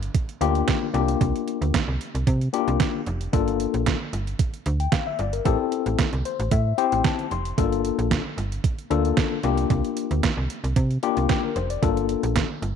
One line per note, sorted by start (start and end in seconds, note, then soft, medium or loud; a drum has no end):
0.03 closed hi-hat medium
0.15 kick loud
0.15 closed hi-hat medium
0.29 closed hi-hat soft
0.41 0.63 D2 medium
0.41 0.88 A#3 medium
0.41 0.88 D4 medium
0.41 0.88 F4 medium
0.41 0.88 G4 loud
0.41 closed hi-hat medium
0.55 closed hi-hat soft
0.68 kick loud
0.68 snare loud
0.68 closed hi-hat medium
0.94 1.16 C2 loud
0.94 1.79 A#3 medium
0.94 1.79 D4 medium
0.94 1.79 F4 medium
0.94 1.80 G4 medium
0.94 closed hi-hat medium
1.08 closed hi-hat medium
1.21 1.32 C2 loud
1.21 kick medium
1.21 closed hi-hat medium
1.36 closed hi-hat soft
1.48 closed hi-hat medium
1.62 1.72 D2 medium
1.62 closed hi-hat soft
1.74 kick loud
1.74 snare loud
1.74 closed hi-hat medium
1.88 1.98 C2 medium
2.01 closed hi-hat medium
2.15 2.25 C2 medium
2.15 closed hi-hat medium
2.27 2.49 C3 loud
2.27 kick loud
2.27 closed hi-hat medium
2.41 closed hi-hat soft
2.53 3.00 A#3 medium
2.53 3.00 D4 medium
2.53 3.00 F4 medium
2.53 3.01 G4 loud
2.53 closed hi-hat medium
2.68 2.78 C2 loud
2.68 closed hi-hat soft
2.80 kick loud
2.80 snare loud
2.80 closed hi-hat medium
3.06 3.28 F1 loud
3.06 closed hi-hat medium
3.21 closed hi-hat medium
3.33 3.66 G1 medium
3.33 3.96 A#3 medium
3.33 3.96 D4 medium
3.33 3.96 F4 medium
3.33 3.96 A4 medium
3.33 kick loud
3.33 closed hi-hat medium
3.48 closed hi-hat soft
3.60 closed hi-hat medium
3.74 3.96 A#1 medium
3.74 closed hi-hat medium
3.86 kick loud
3.86 snare loud
3.86 closed hi-hat medium
4.13 4.35 G1 medium
4.13 closed hi-hat medium
4.27 closed hi-hat soft
4.39 kick loud
4.39 closed hi-hat medium
4.54 closed hi-hat soft
4.66 4.88 D2 loud
4.66 closed hi-hat medium
4.80 4.92 G5 medium
4.80 closed hi-hat soft
4.92 5.06 F5 medium
4.92 kick loud
4.92 snare loud
4.92 closed hi-hat medium
5.07 5.18 E5 medium
5.19 5.41 G1 loud
5.19 5.32 D5 medium
5.19 closed hi-hat medium
5.33 5.58 A#4 medium
5.33 closed hi-hat medium
5.45 5.57 A1 loud
5.45 6.08 C4 medium
5.45 6.08 E4 medium
5.45 6.08 G4 medium
5.45 6.08 A4 medium
5.45 kick loud
5.45 closed hi-hat medium
5.72 closed hi-hat medium
5.86 5.96 A1 medium
5.86 closed hi-hat medium
5.99 kick loud
5.99 snare loud
5.99 closed hi-hat medium
6.13 6.23 C2 medium
6.13 closed hi-hat soft
6.25 6.50 C5 medium
6.25 closed hi-hat medium
6.40 6.50 A1 medium
6.40 closed hi-hat medium
6.51 6.73 A2 loud
6.51 6.76 E5 medium
6.51 kick loud
6.51 closed hi-hat medium
6.78 7.25 C4 medium
6.78 7.25 E4 medium
6.78 7.25 G4 medium
6.78 7.25 C5 loud
6.78 7.03 G5 medium
6.78 closed hi-hat medium
6.92 7.03 A1 medium
6.92 closed hi-hat soft
7.04 kick loud
7.04 snare loud
7.04 closed hi-hat medium
7.19 closed hi-hat soft
7.31 7.53 F1 medium
7.31 7.56 C6 medium
7.31 closed hi-hat medium
7.45 closed hi-hat medium
7.58 7.91 G1 medium
7.58 8.20 A#3 medium
7.58 8.21 D4 medium
7.58 8.21 F4 medium
7.58 8.21 A4 medium
7.58 kick loud
7.58 closed hi-hat medium
7.72 closed hi-hat soft
7.85 closed hi-hat medium
7.99 8.20 A#1 medium
7.99 closed hi-hat medium
8.11 kick loud
8.11 snare loud
8.11 closed hi-hat medium
8.38 8.59 G1 medium
8.38 closed hi-hat medium
8.52 closed hi-hat medium
8.64 kick loud
8.64 closed hi-hat medium
8.79 closed hi-hat soft
8.90 9.12 D2 medium
8.90 9.37 A#3 medium
8.90 9.38 D4 medium
8.90 9.38 F4 medium
8.90 9.38 A4 medium
8.90 closed hi-hat medium
9.05 closed hi-hat soft
9.17 kick loud
9.17 snare loud
9.17 closed hi-hat medium
9.43 9.65 C2 loud
9.43 10.29 A#3 medium
9.43 10.29 D4 medium
9.43 10.29 F4 medium
9.43 10.29 G4 medium
9.43 closed hi-hat medium
9.57 closed hi-hat medium
9.70 9.82 C2 loud
9.70 kick loud
9.70 closed hi-hat medium
9.85 closed hi-hat soft
9.97 closed hi-hat medium
10.11 10.21 D2 medium
10.11 closed hi-hat medium
10.23 kick loud
10.23 snare loud
10.23 closed hi-hat medium
10.37 10.48 C2 medium
10.50 closed hi-hat medium
10.64 10.74 C2 medium
10.64 closed hi-hat medium
10.76 10.98 C3 loud
10.76 kick loud
10.76 closed hi-hat medium
10.91 closed hi-hat soft
11.03 11.50 A#3 medium
11.03 11.50 D4 medium
11.03 11.50 F4 medium
11.03 11.28 G4 loud
11.03 closed hi-hat medium
11.17 11.27 C2 medium
11.17 closed hi-hat soft
11.29 11.43 G4 medium
11.29 kick loud
11.29 snare loud
11.29 closed hi-hat medium
11.44 11.56 A#4 medium
11.56 11.78 F1 loud
11.56 11.69 C5 medium
11.56 closed hi-hat medium
11.70 11.95 D5 medium
11.70 closed hi-hat medium
11.82 12.16 G1 loud
11.82 12.45 A#3 medium
11.82 12.45 D4 medium
11.82 12.45 F4 medium
11.82 12.45 A4 medium
11.82 kick loud
11.82 closed hi-hat medium
11.97 closed hi-hat soft
12.09 closed hi-hat medium
12.23 12.45 A#1 medium
12.23 closed hi-hat medium
12.36 kick loud
12.36 snare loud
12.36 closed hi-hat medium
12.62 12.76 G1 medium
12.62 closed hi-hat medium